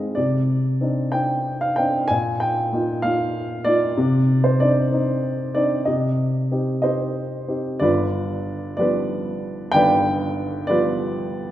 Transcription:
0.00 0.13 G#2 medium
0.00 0.18 G#3 soft
0.00 0.18 C4 soft
0.00 0.18 D#4 soft
0.00 0.18 D#5 medium
0.00 0.18 F5 medium
0.00 0.18 G#5 medium
0.15 2.06 C3 medium
0.15 1.16 D5 medium
0.81 1.12 C4 soft
0.81 1.12 D4 soft
0.81 1.12 D#4 soft
1.12 1.76 C4 soft
1.12 1.76 D4 soft
1.12 1.76 D#4 soft
1.12 1.62 G5 medium
1.61 1.76 F5 medium
1.76 2.09 C4 soft
1.76 2.09 D4 soft
1.76 2.09 D#4 soft
1.76 2.07 G5 medium
2.08 3.94 A#2 medium
2.08 2.38 G#5 medium
2.40 2.99 G5 medium
2.72 3.02 A#3 soft
2.72 3.03 D#4 soft
2.72 3.03 F4 soft
3.02 3.64 A#3 soft
3.02 3.64 D#4 soft
3.02 3.64 F4 soft
3.02 3.61 F5 medium
3.65 3.96 A#3 soft
3.65 3.97 D#4 soft
3.65 3.97 F4 medium
3.65 4.46 D5 medium
3.97 5.83 C3 medium
4.44 4.61 C5 medium
4.60 4.90 C4 soft
4.60 4.91 D4 soft
4.60 4.91 D#4 soft
4.60 5.53 D5 medium
4.92 5.53 C4 soft
4.92 5.54 D4 soft
4.92 5.54 D#4 soft
5.55 5.86 C4 soft
5.55 5.86 D4 soft
5.55 5.87 D#4 soft
5.55 5.84 D5 medium
5.85 7.78 C3 medium
5.85 6.80 D#5 medium
6.51 6.81 C4 soft
6.51 6.82 D#4 soft
6.51 6.82 G4 soft
6.82 7.47 C4 soft
6.82 7.47 D#4 soft
6.82 7.47 G4 soft
6.82 7.78 C5 soft
6.82 7.84 D#5 medium
7.48 7.80 C4 soft
7.48 7.81 D#4 soft
7.48 7.80 G4 soft
7.80 9.70 G1 medium
7.80 9.70 G2 medium
7.80 8.75 F4 medium
7.80 8.75 B4 medium
7.80 8.75 D5 medium
8.77 10.66 F3 soft
8.77 10.66 G3 soft
8.77 10.66 B3 soft
8.77 9.71 F4 medium
8.77 9.71 B4 soft
8.77 9.73 D5 medium
9.72 11.51 G1 medium
9.72 11.51 G2 medium
9.72 10.66 B4 medium
9.72 10.66 D5 medium
9.72 10.64 G5 loud
10.67 11.51 F3 soft
10.67 11.51 G3 soft
10.67 11.51 B3 soft
10.67 11.51 F4 medium
10.67 11.51 B4 medium
10.67 11.51 D5 medium

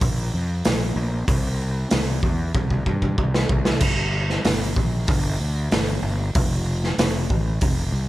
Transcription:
0.01 0.29 A#1 loud
0.01 kick loud
0.01 open hi-hat medium
0.34 0.61 F2 medium
0.65 0.93 A#1 medium
0.65 snare loud
0.65 open hi-hat medium
0.96 1.24 A#1 loud
1.28 1.83 C2 loud
1.28 kick loud
1.28 open hi-hat medium
1.91 2.19 C2 medium
1.91 snare loud
1.91 open hi-hat medium
2.23 2.51 E2 medium
2.23 kick medium
2.55 2.82 C2 medium
2.55 kick loud
2.70 kick medium
2.86 3.14 G2 medium
2.86 kick medium
3.02 kick medium
3.18 3.46 C2 medium
3.18 kick medium
3.34 snare medium
3.49 3.82 C2 loud
3.49 kick loud
3.65 snare loud
3.80 4.36 G1 loud
3.80 kick loud
3.80 crash loud
4.29 snare soft
4.45 4.72 G1 medium
4.45 snare loud
4.45 open hi-hat medium
4.76 5.04 A#1 medium
4.76 kick medium
5.07 5.36 G1 loud
5.07 kick loud
5.07 open hi-hat medium
5.40 5.68 D2 medium
5.71 5.99 G1 medium
5.71 snare loud
5.71 open hi-hat medium
6.02 6.30 G1 loud
6.35 6.91 F1 loud
6.35 kick loud
6.35 open hi-hat medium
6.84 snare soft
6.98 7.26 F1 medium
6.98 snare loud
6.98 open hi-hat medium
7.30 7.58 A1 medium
7.30 kick medium
7.61 7.89 F1 medium
7.61 kick loud
7.61 open hi-hat medium
7.92 8.09 C2 medium

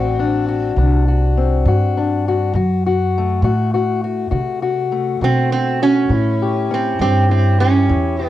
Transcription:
0.00 0.73 A1 medium
0.00 0.41 F#3 medium
0.00 0.71 C4 medium
0.00 1.36 C4 medium
0.00 0.19 D4 medium
0.00 0.48 F#4 medium
0.19 0.78 D4 medium
0.48 1.06 F#4 medium
0.76 1.62 C2 medium
0.76 1.30 D3 medium
0.76 1.96 D4 medium
1.08 1.66 F#4 medium
1.37 2.51 C4 medium
1.65 2.51 G2 medium
1.65 2.19 F#3 medium
1.65 2.26 F#4 medium
1.97 2.52 D4 medium
2.28 2.55 F#4 medium
2.54 3.40 F#2 medium
2.54 3.08 D3 medium
2.54 2.85 F#4 medium
2.87 3.43 F#4 medium
3.18 4.91 A3 medium
3.42 4.29 A2 medium
3.42 3.97 F#3 medium
3.42 3.73 F#4 medium
3.74 4.03 F#4 medium
4.04 4.30 F#4 medium
4.31 5.19 C3 medium
4.31 4.85 D3 medium
4.31 4.61 F#4 medium
4.62 5.21 F#4 medium
4.92 6.70 A3 medium
5.21 6.08 B2 medium
5.21 5.75 F#3 medium
5.21 5.51 C4 medium
5.21 5.52 F#4 medium
5.52 5.82 C4 medium
5.52 5.81 F#4 medium
5.82 6.73 C#4 medium
5.82 6.11 F#4 medium
6.10 6.97 A2 medium
6.10 6.64 A2 medium
6.10 7.28 E4 medium
6.42 7.01 G4 medium
6.71 7.00 C4 medium
6.71 8.29 C#4 medium
6.99 7.86 G2 medium
6.99 7.54 E3 medium
6.99 7.30 C4 medium
6.99 7.60 G4 medium
7.29 7.60 C4 medium
7.29 7.89 E4 medium
7.60 8.26 C#4 medium
7.60 8.18 G4 medium
7.89 8.29 E2 medium
7.89 8.29 A2 medium
7.89 8.29 E4 medium
8.19 8.29 G4 medium
8.26 8.29 B3 medium

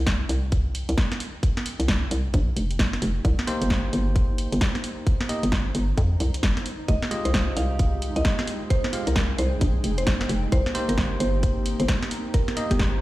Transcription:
0.00 0.26 C2 medium
0.00 3.25 G#3 medium
0.00 13.01 D#4 medium
0.00 0.20 F5 medium
0.00 4.14 G5 medium
0.07 kick loud
0.07 snare loud
0.29 0.84 C2 medium
0.29 open hi-hat medium
0.52 kick loud
0.52 closed hi-hat medium
0.75 open hi-hat loud
0.89 0.96 C2 medium
0.89 closed hi-hat medium
0.98 kick loud
0.98 snare loud
0.98 closed hi-hat medium
1.12 snare medium
1.12 closed hi-hat soft
1.20 open hi-hat medium
1.43 kick loud
1.43 closed hi-hat medium
1.57 snare medium
1.66 open hi-hat loud
1.80 2.08 C2 medium
1.80 closed hi-hat medium
1.88 kick loud
1.88 snare loud
2.11 2.30 C2 medium
2.11 open hi-hat loud
2.34 2.53 A#1 loud
2.34 kick loud
2.34 closed hi-hat medium
2.57 2.99 F1 medium
2.57 open hi-hat loud
2.71 closed hi-hat medium
2.79 kick loud
2.79 snare loud
2.79 closed hi-hat medium
2.93 snare medium
2.93 closed hi-hat soft
3.02 3.21 F1 medium
3.02 open hi-hat medium
3.25 3.36 C2 loud
3.25 kick loud
3.25 closed hi-hat medium
3.32 7.52 C5 medium
3.39 snare medium
3.47 5.27 A#3 medium
3.47 5.27 D#4 medium
3.47 5.27 G4 medium
3.47 5.27 C5 medium
3.47 open hi-hat loud
3.61 3.90 G1 medium
3.61 closed hi-hat medium
3.70 kick loud
3.70 snare loud
3.83 7.67 A#5 medium
3.93 4.47 G1 medium
3.93 open hi-hat medium
4.16 kick loud
4.16 closed hi-hat medium
4.38 open hi-hat loud
4.52 4.59 G1 medium
4.52 closed hi-hat medium
4.61 kick loud
4.61 snare loud
4.61 closed hi-hat medium
4.75 snare medium
4.75 closed hi-hat soft
4.84 open hi-hat medium
5.07 kick loud
5.07 closed hi-hat medium
5.21 snare medium
5.29 5.43 A#3 medium
5.29 5.43 D#4 medium
5.29 5.43 G4 medium
5.29 5.43 D#5 medium
5.29 open hi-hat loud
5.43 5.72 G1 medium
5.43 closed hi-hat medium
5.52 kick loud
5.52 snare loud
5.75 5.94 G1 medium
5.75 open hi-hat medium
5.98 6.16 F2 medium
5.98 kick loud
5.98 closed hi-hat medium
6.20 6.31 C2 medium
6.20 open hi-hat medium
6.34 closed hi-hat medium
6.43 6.54 G1 medium
6.43 kick loud
6.43 snare loud
6.43 closed hi-hat medium
6.57 snare medium
6.57 closed hi-hat soft
6.66 open hi-hat medium
6.88 6.99 F1 medium
6.88 10.48 G#3 medium
6.88 13.01 C4 medium
6.88 13.01 D#4 medium
6.88 8.68 G4 medium
6.88 7.11 D#5 medium
6.88 kick loud
6.88 closed hi-hat medium
6.98 10.52 G#3 medium
7.02 snare medium
7.11 8.91 G#3 medium
7.11 8.91 F4 medium
7.11 8.91 G4 medium
7.11 8.91 D#5 medium
7.11 open hi-hat loud
7.25 7.53 C2 medium
7.25 7.48 C5 medium
7.25 closed hi-hat medium
7.34 12.00 G5 medium
7.34 kick loud
7.34 snare loud
7.57 8.11 C2 medium
7.57 7.79 F5 medium
7.57 open hi-hat medium
7.79 kick loud
7.79 closed hi-hat medium
8.02 open hi-hat medium
8.16 8.23 C2 medium
8.16 8.39 D#5 loud
8.16 closed hi-hat medium
8.25 kick loud
8.25 snare loud
8.25 closed hi-hat medium
8.39 snare medium
8.39 closed hi-hat soft
8.47 open hi-hat medium
8.70 10.50 G#4 medium
8.70 8.93 C5 medium
8.70 kick loud
8.70 closed hi-hat medium
8.84 snare medium
8.93 9.07 G#3 medium
8.93 9.07 F4 medium
8.93 9.07 G4 medium
8.93 9.07 F5 medium
8.93 open hi-hat loud
9.07 9.35 C2 medium
9.07 9.30 A#4 medium
9.07 closed hi-hat medium
9.16 kick loud
9.16 snare loud
9.38 9.57 C2 medium
9.38 9.61 C5 medium
9.38 open hi-hat medium
9.61 9.80 A#1 loud
9.61 kick loud
9.61 closed hi-hat medium
9.84 10.26 F1 medium
9.84 open hi-hat loud
9.98 10.21 C5 loud
9.98 closed hi-hat medium
10.07 kick loud
10.07 snare loud
10.07 closed hi-hat medium
10.21 snare medium
10.21 closed hi-hat soft
10.29 10.48 F1 medium
10.29 open hi-hat medium
10.52 10.63 C2 loud
10.52 13.01 A#3 medium
10.52 13.01 G4 medium
10.52 10.75 C5 loud
10.52 kick loud
10.52 closed hi-hat medium
10.65 13.01 A#5 medium
10.65 snare medium
10.75 12.55 A#3 medium
10.75 12.54 D#4 medium
10.75 12.55 G4 medium
10.75 12.55 C5 loud
10.75 open hi-hat loud
10.79 13.01 C5 medium
10.89 11.17 G1 medium
10.89 11.12 A#4 medium
10.89 closed hi-hat medium
10.98 kick loud
10.98 snare loud
11.20 11.74 G1 medium
11.20 11.43 C5 medium
11.20 open hi-hat loud
11.43 kick loud
11.43 closed hi-hat medium
11.66 open hi-hat loud
11.80 11.86 G1 medium
11.80 12.03 C5 medium
11.80 closed hi-hat medium
11.88 kick loud
11.88 snare loud
11.88 closed hi-hat medium
12.02 snare medium
12.02 closed hi-hat soft
12.11 open hi-hat medium
12.34 12.57 A#4 medium
12.34 kick loud
12.34 closed hi-hat medium
12.48 snare medium
12.48 closed hi-hat soft
12.57 12.70 A#3 medium
12.57 12.70 D#4 medium
12.57 12.70 G4 medium
12.57 12.70 D#5 medium
12.57 open hi-hat loud
12.71 12.99 G1 medium
12.71 12.94 G4 loud
12.71 kick medium
12.71 snare soft
12.71 closed hi-hat medium
12.79 kick loud
12.79 snare loud

